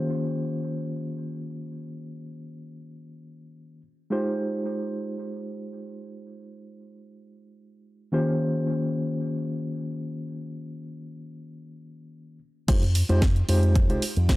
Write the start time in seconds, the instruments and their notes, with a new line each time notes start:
Already playing: reed electric piano D#3 A#3 C#4 F4 G4 C5
4.10 reed electric piano G#3 D#4 F4 G4 C5
8.12 reed electric piano D#3 A#3 C#4 F4 G4 C5
12.68 fingered electric bass F2, reed electric piano G#3 D#4 F4 G4 C5, kick, closed hi-hat, crash
12.83 closed hi-hat
12.95 open hi-hat, ride
13.09 fingered electric bass F2, reed electric piano G#3 D#4 F4 G4 C5, closed hi-hat
13.22 kick, snare, closed hi-hat
13.36 closed hi-hat
13.48 fingered electric bass F2, reed electric piano G#3 D#4 F4 G4 C5, open hi-hat, ride
13.63 closed hi-hat
13.76 kick, closed hi-hat
13.89 fingered electric bass C2, reed electric piano G#3 D#4 F4 G4 C5, closed hi-hat
14.02 open hi-hat, ride
14.17 fingered electric bass F2, closed hi-hat
14.28 reed electric piano G#3 D#4 F4 G4 C5, kick, snare, closed hi-hat